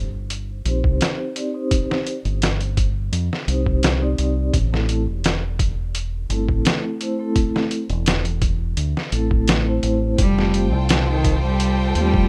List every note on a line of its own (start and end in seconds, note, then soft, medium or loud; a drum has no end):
0.00 0.62 G1 medium
0.30 closed hi-hat medium
0.65 0.82 A#1 medium
0.65 1.32 C4 medium
0.65 1.32 D#4 medium
0.65 1.32 G4 medium
0.65 1.33 C5 medium
0.65 closed hi-hat medium
0.84 0.99 C2 medium
0.84 kick medium
1.01 snare loud
1.01 closed hi-hat medium
1.36 1.50 C4 medium
1.36 1.50 D#4 medium
1.36 1.50 G4 medium
1.36 1.51 D5 medium
1.36 closed hi-hat medium
1.54 1.85 C4 medium
1.54 1.85 D#4 medium
1.54 1.86 G4 medium
1.54 1.86 C5 medium
1.71 kick loud
1.71 closed hi-hat medium
1.90 2.07 C4 medium
1.90 2.07 D#4 medium
1.90 2.07 G4 medium
1.90 2.08 C5 medium
1.90 snare soft
2.07 closed hi-hat medium
2.25 3.09 G1 medium
2.25 closed hi-hat soft
2.42 snare loud
2.42 closed hi-hat medium
2.61 closed hi-hat soft
2.77 kick medium
2.77 closed hi-hat medium
3.12 3.29 F2 medium
3.12 closed hi-hat medium
3.33 snare soft
3.48 4.15 C2 medium
3.48 3.97 C4 medium
3.48 3.98 D#4 medium
3.48 3.98 G4 medium
3.48 3.98 C5 medium
3.48 closed hi-hat medium
3.66 kick medium
3.83 snare loud
3.83 closed hi-hat medium
4.01 4.51 C4 medium
4.01 4.52 D#4 medium
4.01 4.52 G4 medium
4.01 4.52 D5 medium
4.18 4.50 C2 medium
4.18 closed hi-hat medium
4.54 5.07 A1 medium
4.54 kick loud
4.54 closed hi-hat medium
4.72 5.00 A3 medium
4.72 5.01 C4 medium
4.72 5.01 E4 medium
4.72 5.01 A4 medium
4.72 snare soft
4.89 closed hi-hat medium
5.07 6.27 E1 medium
5.24 snare loud
5.24 closed hi-hat medium
5.59 kick loud
5.59 closed hi-hat medium
5.95 closed hi-hat medium
6.29 6.46 G1 medium
6.29 6.96 A3 medium
6.29 6.97 C4 medium
6.29 6.97 E4 medium
6.29 6.97 A4 medium
6.29 closed hi-hat medium
6.49 6.63 A1 medium
6.49 kick medium
6.65 snare loud
6.65 closed hi-hat medium
7.00 7.15 A3 medium
7.00 7.15 C4 medium
7.00 7.15 E4 medium
7.00 7.15 C5 medium
7.00 closed hi-hat medium
7.19 7.50 A3 medium
7.19 7.50 C4 medium
7.19 7.50 E4 medium
7.19 7.51 A4 medium
7.36 kick loud
7.36 closed hi-hat medium
7.55 7.71 A3 medium
7.55 7.72 C4 medium
7.55 7.72 E4 medium
7.55 7.72 A4 medium
7.55 snare soft
7.71 closed hi-hat medium
7.90 8.74 E1 medium
7.90 closed hi-hat soft
8.06 snare loud
8.06 closed hi-hat medium
8.25 closed hi-hat soft
8.42 kick medium
8.42 closed hi-hat medium
8.77 8.93 D2 medium
8.77 closed hi-hat medium
8.97 snare soft
9.12 9.80 A1 medium
9.12 9.62 A3 medium
9.12 9.62 C4 medium
9.12 9.63 E4 medium
9.12 9.63 A4 medium
9.12 closed hi-hat medium
9.31 kick medium
9.48 snare loud
9.48 closed hi-hat medium
9.67 10.17 A3 medium
9.67 10.17 C4 medium
9.67 10.17 E4 medium
9.67 10.17 C5 medium
9.83 10.14 A1 medium
9.83 closed hi-hat medium
10.18 10.72 F1 medium
10.18 10.51 G3 medium
10.18 12.29 F4 medium
10.18 12.29 A4 medium
10.18 12.29 C5 medium
10.18 12.29 G5 medium
10.18 kick loud
10.18 closed hi-hat medium
10.37 10.65 A3 medium
10.37 10.65 C4 medium
10.37 10.66 F4 medium
10.37 10.66 G4 medium
10.37 snare soft
10.54 closed hi-hat medium
10.72 11.92 C2 medium
10.89 snare loud
10.89 closed hi-hat medium
11.10 11.40 D#3 medium
11.25 kick medium
11.25 closed hi-hat medium
11.45 11.91 G3 medium
11.60 closed hi-hat medium
11.95 12.11 D#2 medium
11.95 12.29 G3 medium
11.95 12.29 A3 medium
11.95 12.29 C4 medium
11.95 12.29 F4 medium
11.95 12.29 G4 medium
11.95 closed hi-hat medium
12.14 12.28 F1 medium
12.14 kick medium